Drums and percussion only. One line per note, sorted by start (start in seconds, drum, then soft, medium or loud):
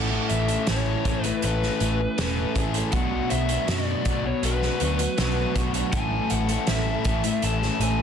0.29 closed hi-hat medium
0.48 closed hi-hat medium
0.67 snare loud
0.67 closed hi-hat medium
1.05 kick medium
1.05 closed hi-hat medium
1.24 closed hi-hat medium
1.42 closed hi-hat medium
1.63 snare soft
1.80 closed hi-hat medium
2.18 snare loud
2.18 closed hi-hat medium
2.55 kick medium
2.55 closed hi-hat medium
2.74 closed hi-hat medium
2.92 kick loud
2.92 closed hi-hat medium
3.30 closed hi-hat medium
3.49 closed hi-hat medium
3.68 snare loud
3.68 closed hi-hat medium
4.05 kick medium
4.05 closed hi-hat medium
4.43 closed hi-hat medium
4.62 snare soft
4.80 closed hi-hat medium
4.99 closed hi-hat medium
5.18 snare loud
5.18 closed hi-hat medium
5.55 kick medium
5.55 closed hi-hat medium
5.74 closed hi-hat medium
5.92 kick loud
5.92 closed hi-hat medium
6.30 closed hi-hat medium
6.49 closed hi-hat medium
6.67 snare loud
6.67 closed hi-hat medium
7.04 kick medium
7.04 closed hi-hat medium
7.24 closed hi-hat medium
7.42 closed hi-hat medium
7.62 snare soft
7.81 closed hi-hat medium